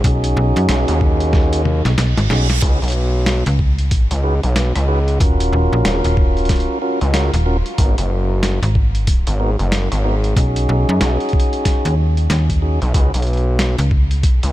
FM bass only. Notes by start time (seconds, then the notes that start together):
0.04 B1
0.37 B1
0.56 F#2
1.85 B1
1.98 B1
2.18 G#1
2.30 B1
3.47 C#2
5.20 D#1
5.53 D#1
5.72 A#1
6.05 D#1
7.34 D#1
8.63 G#1
10.36 B1
10.69 B1
10.89 F#2
11.85 D#2
12.30 D#2
13.79 C#2
14.23 C2